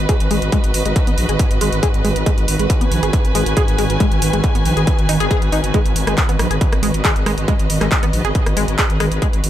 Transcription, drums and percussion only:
0.09 kick loud
0.09 closed hi-hat medium
0.20 closed hi-hat medium
0.31 open hi-hat medium
0.42 closed hi-hat medium
0.52 kick loud
0.52 closed hi-hat medium
0.64 closed hi-hat medium
0.74 open hi-hat loud
0.86 closed hi-hat medium
0.96 kick loud
0.96 closed hi-hat medium
1.07 closed hi-hat medium
1.18 open hi-hat loud
1.29 closed hi-hat medium
1.39 kick loud
1.39 closed hi-hat medium
1.51 closed hi-hat medium
1.61 open hi-hat loud
1.72 closed hi-hat medium
1.83 kick loud
1.83 closed hi-hat medium
1.94 closed hi-hat medium
2.05 open hi-hat loud
2.16 closed hi-hat medium
2.26 kick loud
2.26 closed hi-hat medium
2.38 closed hi-hat medium
2.48 open hi-hat loud
2.59 closed hi-hat medium
2.70 kick loud
2.70 closed hi-hat medium
2.81 closed hi-hat medium
2.92 open hi-hat medium
3.03 closed hi-hat medium
3.13 kick loud
3.13 closed hi-hat medium
3.25 closed hi-hat medium
3.35 open hi-hat loud
3.46 closed hi-hat medium
3.57 kick loud
3.57 closed hi-hat medium
3.68 closed hi-hat medium
3.78 open hi-hat loud
3.90 closed hi-hat medium
4.00 kick loud
4.00 closed hi-hat medium
4.12 closed hi-hat medium
4.22 open hi-hat loud
4.33 closed hi-hat medium
4.44 kick loud
4.44 closed hi-hat medium
4.55 closed hi-hat medium
4.65 open hi-hat medium
4.77 closed hi-hat medium
4.87 kick loud
4.87 closed hi-hat medium
4.99 closed hi-hat soft
5.09 open hi-hat loud
5.20 closed hi-hat medium
5.31 kick loud
5.31 closed hi-hat medium
5.42 closed hi-hat soft
5.52 open hi-hat loud
5.64 closed hi-hat medium
5.74 kick loud
5.74 closed hi-hat medium
5.86 closed hi-hat soft
5.96 open hi-hat loud
6.07 cross-stick loud
6.07 closed hi-hat medium
6.18 kick loud
6.18 clap loud
6.18 closed hi-hat medium
6.29 closed hi-hat medium
6.39 cross-stick loud
6.39 open hi-hat medium
6.51 closed hi-hat medium
6.61 kick loud
6.61 closed hi-hat medium
6.73 cross-stick medium
6.73 closed hi-hat soft
6.83 open hi-hat loud
6.94 closed hi-hat medium
7.05 kick loud
7.05 clap loud
7.05 closed hi-hat medium
7.16 closed hi-hat soft
7.26 cross-stick medium
7.26 open hi-hat loud
7.38 closed hi-hat medium
7.48 kick loud
7.48 closed hi-hat medium
7.59 closed hi-hat soft
7.70 open hi-hat loud
7.81 cross-stick medium
7.81 clap soft
7.81 closed hi-hat medium
7.92 kick loud
7.92 clap loud
7.92 closed hi-hat medium
8.03 closed hi-hat medium
8.13 open hi-hat medium
8.25 closed hi-hat soft
8.35 kick loud
8.35 closed hi-hat medium
8.46 cross-stick medium
8.46 closed hi-hat soft
8.57 open hi-hat loud
8.68 closed hi-hat medium
8.78 kick loud
8.78 clap loud
8.78 closed hi-hat medium
8.90 closed hi-hat medium
9.00 cross-stick medium
9.00 open hi-hat medium
9.12 closed hi-hat soft
9.22 kick loud
9.22 closed hi-hat medium
9.33 closed hi-hat medium
9.44 open hi-hat loud

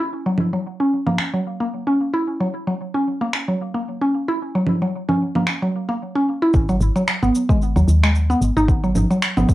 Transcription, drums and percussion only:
0.38 low conga medium
1.07 low conga medium
1.18 finger snap medium
3.33 finger snap medium
4.66 low conga medium
5.09 low conga medium
5.35 low conga medium
5.47 finger snap medium
6.54 kick loud
6.54 cabasa soft
6.69 cabasa soft
6.81 cabasa medium
6.96 cabasa soft
7.08 finger snap medium
7.08 cabasa soft
7.23 cabasa soft
7.35 cabasa medium
7.49 kick loud
7.49 cabasa soft
7.62 cabasa soft
7.77 cabasa soft
7.88 cabasa medium
8.04 finger snap medium
8.04 cabasa soft
8.15 cabasa soft
8.31 cabasa soft
8.42 cabasa medium
8.57 cabasa soft
8.68 kick loud
8.68 cabasa soft
8.84 cabasa soft
8.95 low conga medium
8.95 cabasa medium
9.11 cabasa soft
9.22 finger snap medium
9.22 cabasa soft
9.37 low conga medium
9.37 cabasa soft
9.49 kick loud
9.49 cabasa medium

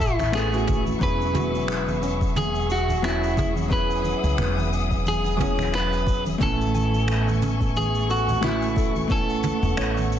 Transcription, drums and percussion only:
0.00 kick medium
0.00 shaker medium
0.19 finger snap soft
0.19 high conga medium
0.19 low conga medium
0.19 shaker soft
0.33 finger snap loud
0.33 shaker medium
0.53 shaker soft
0.67 kick loud
0.67 mid tom medium
0.67 shaker medium
0.86 muted conga soft
0.86 high conga medium
0.86 shaker soft
1.01 kick loud
1.01 shaker medium
1.21 shaker soft
1.35 mid tom medium
1.35 muted conga soft
1.35 high conga medium
1.35 shaker medium
1.55 shaker soft
1.68 finger snap medium
1.68 shaker medium
1.87 high conga medium
1.87 shaker soft
2.03 shaker medium
2.21 kick medium
2.21 muted conga medium
2.21 shaker medium
2.36 mid tom medium
2.36 high conga medium
2.36 shaker medium
2.55 shaker soft
2.70 shaker medium
2.88 high conga medium
2.88 low conga medium
2.88 shaker medium
3.04 finger snap medium
3.04 shaker medium
3.24 shaker soft
3.37 kick loud
3.37 mid tom medium
3.37 shaker medium
3.56 high conga loud
3.56 shaker medium
3.71 kick loud
3.71 shaker medium
3.91 shaker soft
4.04 muted conga soft
4.04 high conga medium
4.04 shaker medium
4.24 shaker medium
4.38 finger snap medium
4.38 mid tom medium
4.38 shaker medium
4.58 high conga medium
4.58 shaker soft
4.73 shaker medium
4.91 kick medium
4.91 muted conga medium
4.91 shaker soft
5.06 high conga medium
5.06 shaker medium
5.24 muted conga medium
5.24 shaker soft
5.39 kick medium
5.39 mid tom medium
5.39 shaker medium
5.58 finger snap soft
5.58 high conga medium
5.58 low conga medium
5.58 shaker soft
5.74 finger snap loud
5.74 shaker medium
5.93 shaker soft
6.07 kick loud
6.07 shaker medium
6.26 muted conga soft
6.26 high conga medium
6.26 shaker medium
6.40 kick loud
6.40 mid tom medium
6.40 shaker medium
6.61 shaker soft
6.74 muted conga soft
6.74 high conga medium
6.74 shaker medium
6.94 shaker soft
7.08 finger snap loud
7.08 shaker medium
7.27 high conga medium
7.27 shaker soft
7.42 mid tom medium
7.42 shaker medium
7.61 kick medium
7.61 muted conga medium
7.61 shaker soft
7.76 high conga medium
7.76 shaker medium
7.95 shaker soft
8.10 shaker medium
8.28 high conga medium
8.28 low conga medium
8.28 shaker medium
8.43 finger snap loud
8.43 mid tom medium
8.43 shaker medium
8.62 shaker soft
8.76 kick loud
8.76 shaker medium
8.96 high conga medium
8.96 shaker medium
9.10 kick loud
9.10 shaker medium
9.29 shaker soft
9.43 mid tom medium
9.43 muted conga soft
9.43 high conga medium
9.43 shaker medium
9.63 shaker soft
9.77 finger snap loud
9.77 shaker medium
9.97 high conga medium
9.97 shaker soft
10.12 shaker medium

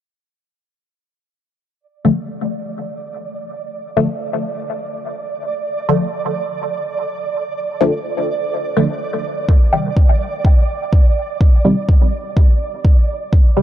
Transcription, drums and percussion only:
9.49 kick loud
9.97 kick loud
10.45 kick loud
10.93 kick loud
11.41 kick loud
11.89 kick loud
12.37 kick loud
12.85 kick loud
13.33 kick loud

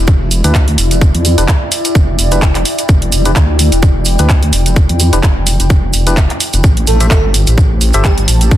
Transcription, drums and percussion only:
0.07 kick loud
0.07 cabasa soft
0.31 open hi-hat loud
0.31 cabasa medium
0.44 closed hi-hat medium
0.44 cabasa soft
0.55 kick loud
0.55 clap loud
0.55 cabasa soft
0.68 closed hi-hat soft
0.78 open hi-hat loud
0.78 cabasa medium
0.91 closed hi-hat medium
0.91 cabasa soft
1.01 kick loud
1.01 cabasa soft
1.15 closed hi-hat medium
1.25 open hi-hat loud
1.25 cabasa medium
1.38 closed hi-hat medium
1.38 cabasa soft
1.48 kick loud
1.48 clap loud
1.48 cabasa soft
1.72 open hi-hat loud
1.72 cabasa medium
1.85 closed hi-hat medium
1.85 cabasa soft
1.95 kick loud
1.95 cabasa soft
2.19 open hi-hat loud
2.19 cabasa medium
2.31 closed hi-hat medium
2.31 cabasa medium
2.42 kick loud
2.42 clap loud
2.42 cabasa soft
2.55 clap soft
2.55 closed hi-hat soft
2.65 open hi-hat loud
2.65 cabasa medium
2.78 closed hi-hat medium
2.78 cabasa soft
2.89 kick loud
2.89 cabasa soft
3.02 closed hi-hat soft
3.12 open hi-hat loud
3.12 cabasa medium
3.25 closed hi-hat medium
3.25 cabasa soft
3.36 kick loud
3.36 clap loud
3.36 cabasa soft
3.59 open hi-hat loud
3.59 cabasa loud
3.72 closed hi-hat medium
3.72 cabasa medium
3.82 kick loud
3.82 cabasa soft
4.05 open hi-hat loud
4.05 cabasa medium
4.19 closed hi-hat medium
4.19 cabasa medium
4.29 kick loud
4.29 clap loud
4.29 cabasa soft
4.43 closed hi-hat soft
4.53 open hi-hat loud
4.53 cabasa medium
4.66 closed hi-hat medium
4.66 cabasa soft
4.76 kick loud
4.76 cabasa soft
4.89 closed hi-hat soft
5.00 open hi-hat loud
5.00 cabasa medium
5.13 closed hi-hat medium
5.13 cabasa soft
5.23 kick loud
5.23 clap loud
5.23 cabasa soft
5.47 open hi-hat loud
5.47 cabasa medium
5.60 closed hi-hat medium
5.60 cabasa medium
5.70 kick loud
5.70 cabasa soft
5.93 open hi-hat loud
5.93 cabasa medium
6.07 closed hi-hat medium
6.07 cabasa soft
6.17 kick loud
6.17 clap loud
6.17 cabasa soft
6.30 clap soft
6.30 closed hi-hat soft
6.40 open hi-hat loud
6.40 cabasa medium
6.53 closed hi-hat medium
6.53 cabasa soft
6.63 kick loud
6.63 cabasa soft
6.77 closed hi-hat soft
6.87 open hi-hat loud
6.87 cabasa medium
7.00 closed hi-hat medium
7.00 cabasa soft
7.11 kick loud
7.11 clap loud
7.11 cabasa soft
7.34 open hi-hat loud
7.34 cabasa medium
7.47 closed hi-hat medium
7.47 cabasa soft
7.58 kick loud
7.58 cabasa soft
7.81 open hi-hat medium
7.81 cabasa medium
7.93 closed hi-hat medium
7.93 cabasa soft
8.04 kick loud
8.04 clap loud
8.04 cabasa soft
8.18 closed hi-hat soft
8.28 open hi-hat loud
8.28 cabasa medium
8.41 closed hi-hat medium
8.41 cabasa soft
8.51 kick loud
8.51 cabasa soft

